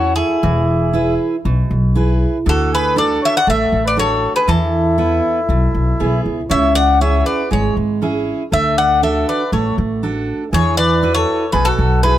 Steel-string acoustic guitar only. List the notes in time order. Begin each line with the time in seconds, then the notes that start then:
Already playing: E4 A4 C#5
0.43 E3
0.93 E4 G#4 B4
1.45 B2
1.95 E4 G#4 B4
2.46 D3
2.96 D4 F#4 A4
3.47 A3
3.97 D4 F#4 A4
4.48 E3
4.98 B3 E4 B4
5.50 B2
6.00 B3 E4 G#4
6.50 C#3
7.01 C#4 E4 G#4
7.51 G#3
8.02 C#4 E4 G#4
8.52 D3
9.03 D4 F#4 A4
9.53 A3
10.03 D4 F#4 A4
10.53 E3
11.03 E4 F#4 B4
11.53 B2
12.03 E4 F#4 G#4